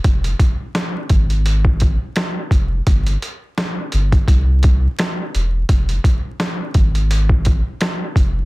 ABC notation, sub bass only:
X:1
M:4/4
L:1/16
Q:"Swing 16ths" 1/4=85
K:Fm
V:1 name="Sub bass" clef=bass
F,,,2 z4 A,,,4- A,,, z3 F,,,2 | G,,,2 z4 G,,,2 C,,4 z2 =E,,,2 | F,,,2 z4 A,,,4- A,,, z3 F,,,2 |]